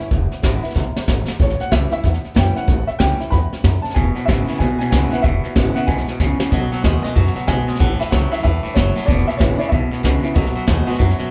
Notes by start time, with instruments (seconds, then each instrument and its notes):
0.00 steel-string acoustic guitar C#4 E4
0.11 upright bass E1, steel-string acoustic guitar E2, kick, snare
0.31 muted upright bass stroke, snare
0.42 upright bass G#1, steel-string acoustic guitar D3 G#3 B3 E4, kick, snare, hi-hat pedal
0.63 steel-string acoustic guitar B3 E4, snare
0.70 snare
0.75 upright bass B1, steel-string acoustic guitar F#2, kick, snare
0.96 muted upright bass stroke, snare
1.08 upright bass G#1, steel-string acoustic guitar G#2, kick, snare, hi-hat pedal
1.28 muted upright bass stroke, snare
1.39 upright bass A1, steel-string acoustic guitar A2, upright piano C#5, kick, snare
1.50 snare
1.60 upright piano F#5, snare
1.71 upright bass C#2, steel-string acoustic guitar E3 G3 C#4 E4, upright piano E5, kick, snare, hi-hat pedal
1.91 steel-string acoustic guitar C#4 E4, upright piano E5, muted upright bass stroke, snare
2.04 steel-string acoustic guitar E2, upright bass E2, kick, snare
2.14 snare
2.24 muted upright bass stroke, snare
2.35 upright bass F#2, steel-string acoustic guitar E3 G3 C#4 E4, upright piano G5, kick, snare, hi-hat pedal
2.55 steel-string acoustic guitar C#4 E4, upright piano F#5, muted upright bass stroke, snare
2.68 upright bass A1, steel-string acoustic guitar A2, kick, snare
2.87 upright piano E5, muted upright bass stroke, snare
2.99 upright bass C#2, steel-string acoustic guitar E3 G3 C#4 E4, upright piano G5, kick, snare, hi-hat pedal
3.20 steel-string acoustic guitar C#4 E4, muted upright bass stroke, snare
3.30 upright bass E2, steel-string acoustic guitar G2, upright piano B5, kick, snare
3.52 muted upright bass stroke, snare
3.64 upright bass F#2, steel-string acoustic guitar F#2, kick, snare, hi-hat pedal
3.82 upright piano A5, muted upright bass stroke, snare
3.90 upright piano G#5, snare
3.95 upright bass E1, clean electric guitar E2 B2, steel-string acoustic guitar E2, kick, snare
4.15 clean electric guitar E2 B2, snare
4.25 upright bass G#1, clean electric guitar E2 C#3, steel-string acoustic guitar D3 G#3, upright piano E5, kick, snare, hi-hat pedal
4.30 steel-string acoustic guitar B3 E4
4.48 clean electric guitar E2 C#3, steel-string acoustic guitar B3 E4, muted upright bass stroke, snare
4.54 snare
4.58 upright bass B1, clean electric guitar E2 B2, steel-string acoustic guitar B2, upright piano G#5, kick, snare
4.79 clean electric guitar E2 B2, upright piano G#5, muted upright bass stroke, snare
4.90 upright bass C#2, clean electric guitar E2 C#3, steel-string acoustic guitar D3 G#3 B3 E4, upright piano G#5, kick, snare, hi-hat pedal
5.11 clean electric guitar E2 C#3, steel-string acoustic guitar B3 E4, upright piano F#5, muted upright bass stroke, snare
5.22 upright bass E1, clean electric guitar E2 B2, steel-string acoustic guitar E2, upright piano E5, kick, snare
5.43 clean electric guitar E2 B2, muted upright bass stroke, snare
5.55 upright bass G#1, clean electric guitar E2 C#3, steel-string acoustic guitar D3 G#3 B3 E4, kick, snare, hi-hat pedal
5.75 clean electric guitar E2 C#3, steel-string acoustic guitar E4, upright piano F#5, muted upright bass stroke, snare
5.79 steel-string acoustic guitar B3
5.87 upright bass B1, clean electric guitar E2 B2, steel-string acoustic guitar G#2, upright piano G#5, kick, snare
5.98 snare
6.08 clean electric guitar E2 B2, muted upright bass stroke, snare
6.20 upright bass C#2, clean electric guitar E2 C#3, steel-string acoustic guitar A2, kick, snare, hi-hat pedal
6.39 clean electric guitar E2 C#3, muted upright bass stroke, snare
6.50 upright bass B1, steel-string acoustic guitar B2, clean electric guitar B2 F#3, upright piano D#5, kick, snare
6.72 clean electric guitar B2 F#3, upright piano F#5, muted upright bass stroke, snare
6.83 upright bass D#2, clean electric guitar B2 G#3, steel-string acoustic guitar D#3 A3 B3 F#4, upright piano D#5, kick, snare, hi-hat pedal
7.03 clean electric guitar B2 G#3, upright piano D#5, muted upright bass stroke, snare
7.16 upright bass F#2, clean electric guitar B2 F#3, steel-string acoustic guitar C#3, kick, snare
7.27 snare
7.35 clean electric guitar B2 F#3, muted upright bass stroke, snare
7.47 upright bass B1, clean electric guitar B2 G#3, steel-string acoustic guitar B2, upright piano G#5, kick, snare, hi-hat pedal
7.67 clean electric guitar B2 G#3, muted upright bass stroke, snare
7.75 snare
7.80 upright bass A1, clean electric guitar A2 E3, steel-string acoustic guitar A2, upright piano F#5, kick, snare
7.99 clean electric guitar A2 E3, upright piano E5, muted upright bass stroke, snare
8.10 upright bass C#2, clean electric guitar A2 F#3, steel-string acoustic guitar E3 G3 C#4 E4, upright piano F#5, kick, snare, hi-hat pedal
8.31 clean electric guitar A2 F#3, steel-string acoustic guitar C#4 E4, upright piano E5, muted upright bass stroke, snare
8.39 clean electric guitar A2, snare
8.43 upright bass E2, steel-string acoustic guitar G2, clean electric guitar E3, upright piano E5, kick, snare
8.63 clean electric guitar A2 E3, muted upright bass stroke, snare
8.74 upright bass F#1, steel-string acoustic guitar F#2, clean electric guitar A2 F#3, upright piano C#5, kick, snare, hi-hat pedal
8.96 clean electric guitar A2 F#3, muted upright bass stroke, snare
9.03 upright piano D5, snare
9.07 upright bass E1, clean electric guitar E2 B2, steel-string acoustic guitar E2, kick, snare
9.18 snare
9.27 clean electric guitar E2 B2, upright piano E5, muted upright bass stroke, snare
9.37 upright bass G#1, clean electric guitar E2 C#3, steel-string acoustic guitar D3 G#3 B3 E4, upright piano C#5, kick, snare, hi-hat pedal
9.58 clean electric guitar E2 C#3, steel-string acoustic guitar B3 E4, upright piano D5, snare
9.69 upright bass B1, clean electric guitar E2 B2, steel-string acoustic guitar B2, upright piano E5, kick, snare
9.91 clean electric guitar E2 B2, muted upright bass stroke, snare
10.03 upright bass C#2, clean electric guitar E2 C#3, steel-string acoustic guitar D3 G#3 B3 E4, kick, snare, hi-hat pedal
10.23 clean electric guitar E2 C#3, steel-string acoustic guitar B3 E4, snare
10.34 upright bass B1, clean electric guitar B2 F#3, steel-string acoustic guitar B2, upright piano D#5, kick, snare
10.46 snare
10.55 clean electric guitar B2 F#3, muted upright bass stroke, snare
10.67 upright bass D#2, clean electric guitar B2 G#3, steel-string acoustic guitar D#3 A3 B3 F#4, kick, snare, hi-hat pedal
10.87 clean electric guitar B2 G#3, steel-string acoustic guitar B3 F#4, muted upright bass stroke, snare
10.94 snare
10.99 upright bass F#2, steel-string acoustic guitar F#2, clean electric guitar B2 F#3, kick, snare
11.10 snare
11.19 clean electric guitar B2 F#3, muted upright bass stroke, snare